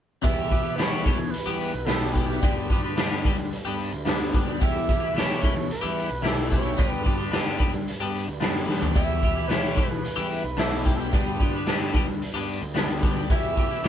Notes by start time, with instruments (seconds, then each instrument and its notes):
0.22 clean electric guitar E2 B2 E3 G3 B3 G4, picked electric bass E2, tonewheel organ G4 B4 E5 B5, analog synth lead E5, kick, closed hi-hat
0.49 clean electric guitar E3 G3 B3 G4, kick, closed hi-hat
0.63 clean electric guitar E3 G3 B3 G4
0.76 clean electric guitar E2 B2 E3 G3 B3 G4, picked electric bass E2, analog synth lead C#5, snare, closed hi-hat
1.05 clean electric guitar E3 G3 B3 G4, kick, closed hi-hat
1.19 picked electric bass E3, muted clean electric guitar stroke
1.30 analog synth lead B4, closed hi-hat
1.46 picked electric bass E2, clean electric guitar E3 G3 B3 G4
1.61 closed hi-hat
1.74 picked electric bass B1, muted clean electric guitar stroke
1.85 clean electric guitar E2 B2 E3 G3 B3, analog synth lead A4, snare, closed hi-hat
1.90 clean electric guitar G4
2.12 clean electric guitar E3 G3 B3, analog synth lead G4, kick, closed hi-hat
2.17 clean electric guitar G4
2.27 clean electric guitar E3 G3 B3 G4
2.41 clean electric guitar G2 D3 G3 B3 D4 G4, picked electric bass G2, tonewheel organ D5 B5, kick, closed hi-hat
2.69 clean electric guitar G3 B3 D4 G4, kick, closed hi-hat
2.83 clean electric guitar G3 B3 D4 G4
2.96 clean electric guitar G2 D3 G3 B3 D4 G4, picked electric bass G2, snare, closed hi-hat
3.24 clean electric guitar G3 B3 D4 G4, kick, closed hi-hat
3.38 picked electric bass G3, muted clean electric guitar stroke
3.53 closed hi-hat
3.65 picked electric bass G2, clean electric guitar G3 B3 D4 G4
3.80 closed hi-hat
3.92 picked electric bass D2, muted clean electric guitar stroke
4.05 clean electric guitar G2 D3 G3 B3 D4 G4, snare, closed hi-hat
4.33 clean electric guitar G3 B3 D4 G4, kick, closed hi-hat
4.46 clean electric guitar G3 B3 D4 G4
4.60 clean electric guitar E2 B2 E3 G3 E4 G4, picked electric bass E2, tonewheel organ E5, analog synth lead E5, kick, closed hi-hat
4.87 clean electric guitar E3 G3 E4 G4, kick, closed hi-hat
5.00 clean electric guitar E3 G3 E4 G4
5.14 picked electric bass E2, clean electric guitar E2 B2 E3 G3 E4 G4, analog synth lead C#5, snare, closed hi-hat
5.42 clean electric guitar E3 G3 E4 G4, kick, closed hi-hat
5.56 picked electric bass E3, muted clean electric guitar stroke
5.71 analog synth lead B4, closed hi-hat
5.81 picked electric bass E2, clean electric guitar E3 G3 E4 G4
5.98 closed hi-hat
6.10 picked electric bass B1, muted clean electric guitar stroke
6.22 clean electric guitar E2 B2 E3 G3 E4 G4, snare, closed hi-hat
6.28 analog synth lead A4
6.50 clean electric guitar E3 G3 E4 G4, analog synth lead C#5, kick, closed hi-hat
6.63 clean electric guitar E3 G3 E4 G4
6.76 clean electric guitar G2 D3 G3 B3 D4 G4, picked electric bass G2, tonewheel organ D5, kick, closed hi-hat
7.03 clean electric guitar G3 B3 D4 G4, kick, closed hi-hat
7.17 clean electric guitar G3 B3 D4 G4
7.30 clean electric guitar G2 D3 G3 B3 D4 G4, picked electric bass G2, snare, closed hi-hat
7.58 clean electric guitar G3 B3 D4 G4, kick, closed hi-hat
7.73 picked electric bass G3, muted clean electric guitar stroke
7.88 closed hi-hat
8.00 picked electric bass G2, clean electric guitar G3 B3 D4 G4
8.16 closed hi-hat
8.28 picked electric bass D2, muted clean electric guitar stroke
8.40 picked electric bass F#2, clean electric guitar G2 D3 G3 B3 D4 G4, snare, closed hi-hat
8.66 picked electric bass E2, clean electric guitar G3 B3 D4 G4, snare
8.81 clean electric guitar G3 B3 D4 G4, floor tom
8.94 clean electric guitar E2 B2 E3 G3 E4 G4, picked electric bass E2, analog synth lead E5, tonewheel organ E5, kick, closed hi-hat
9.22 clean electric guitar E3 G3 E4 G4, kick, closed hi-hat
9.35 clean electric guitar E3 G3 E4 G4
9.48 clean electric guitar E2 B2 E3 G3 E4 G4, picked electric bass E2, analog synth lead C#5, snare, closed hi-hat
9.74 clean electric guitar E3 G3 E4 G4, kick, closed hi-hat
9.89 picked electric bass E3, analog synth lead B4, muted clean electric guitar stroke
10.03 analog synth lead B4, closed hi-hat
10.16 picked electric bass E2, clean electric guitar E3 G3 E4 G4
10.32 closed hi-hat
10.44 picked electric bass B1
10.57 clean electric guitar E2 B2 E3 G3 E4 G4, analog synth lead A4, snare, closed hi-hat
10.84 clean electric guitar E3 G3 E4 G4, analog synth lead G4, kick, closed hi-hat
10.95 clean electric guitar G4, analog synth lead A4
11.00 clean electric guitar E3 G3 E4, analog synth lead G4
11.12 clean electric guitar G2 D3 G3 B3 D4 G4, picked electric bass G2, tonewheel organ D5, kick, closed hi-hat
11.39 clean electric guitar G3 B3 D4 G4, kick, closed hi-hat
11.53 clean electric guitar G3 B3 D4 G4
11.66 clean electric guitar G2 D3 G3 B3 D4 G4, picked electric bass G2, snare, closed hi-hat
11.94 clean electric guitar G3 B3 D4 G4, kick, closed hi-hat
12.08 picked electric bass G3, muted clean electric guitar stroke
12.22 closed hi-hat
12.34 picked electric bass G2, clean electric guitar G3 B3 D4 G4
12.49 closed hi-hat
12.62 picked electric bass D2, muted clean electric guitar stroke
12.74 clean electric guitar G2 D3 G3 B3 D4 G4, snare, closed hi-hat
13.01 clean electric guitar G3 B3 D4 G4, kick, closed hi-hat
13.16 clean electric guitar G3 B3 D4 G4
13.29 clean electric guitar E2 B2 E3 G3 E4 G4, picked electric bass E2, tonewheel organ G4 B4 E5, kick, closed hi-hat
13.36 analog synth lead E5
13.56 clean electric guitar E3 G3 E4 G4, kick, closed hi-hat
13.69 clean electric guitar E3 G3 E4 G4
13.82 clean electric guitar E2 B2 E3 G3, picked electric bass E2, closed hi-hat